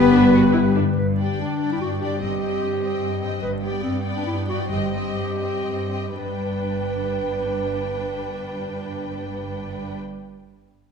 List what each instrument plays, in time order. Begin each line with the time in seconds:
Already playing: double bass section G1, cello section G2, harp G2 D4 B4, clarinet B3, french horn section B3 G4, violin section B4, flute section B4, oboe B4
0.11 harp G3, viola section D4
0.33 viola section F#4, harp B4
0.53 harp D3, viola section E4
0.75 viola section D4, harp B4
0.80 harp G2
0.85 harp G3
0.89 harp D4
0.93 harp B4
0.98 double bass section G1, cello section G2, clarinet B4
1.19 viola section D4, clarinet G4, violin section D5 G5
1.41 cello section G2, clarinet D4
1.60 viola section D4, violin section D5 G5
1.72 clarinet E4
1.81 cello section G2, clarinet F#4
2.00 harp G2, viola section D4, clarinet G4, violin section D5 G5
2.07 harp G3
2.12 harp D#4
2.16 harp C5
2.21 double bass section G1, cello section G2, viola section C4, clarinet G4, violin section D#5 G5
2.40 viola section C4, violin section D#5 G5
2.62 cello section G2
2.82 viola section C4, violin section D#5 G5
3.02 cello section G2
3.21 harp G2, viola section C4, violin section D#5 G5
3.29 harp G3 D4
3.38 harp B4
3.42 double bass section G1, cello section G2, clarinet B4
3.62 viola section B3, clarinet G4, violin section D5 G5
3.83 cello section G2, clarinet C4
4.04 viola section B3, violin section D5 G5
4.16 clarinet D4
4.26 cello section G2, clarinet E4
4.48 viola section B3, clarinet F#4, violin section D5 G5
4.52 harp G2
4.57 harp G3
4.61 harp D#4
4.65 harp C5
4.70 double bass section G1, cello section G2, viola section C4, clarinet G4, violin section D#5 G5
4.93 viola section C4, violin section D#5 G5
5.17 cello section G2
5.39 viola section C4, violin section D#5 G5
5.66 cello section G2
5.91 viola section C4, violin section D#5 G5
6.17 double bass section G1, harp G2, cello section G2, viola section D4, violin section B4 G5, clarinet B4
6.26 harp G3
6.33 harp D4
6.40 harp B4
6.46 harp D5